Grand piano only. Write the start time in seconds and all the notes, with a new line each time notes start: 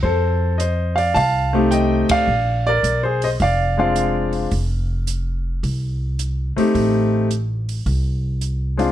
0.03 A4 C5
0.58 C5 D#5
0.96 D5 F5
1.14 F5 A5
1.53 A3 C4 D#4 G4
1.71 D#5 G5
2.11 D5 F5
2.67 A#4 D5
3.03 G#4 C5
3.24 C5 D#5
3.42 D5 F5
3.77 G#3 C4 D4 F4 D5 F5
6.57 A3 C4 D#4 G4
8.77 G#3 C4 D4 F4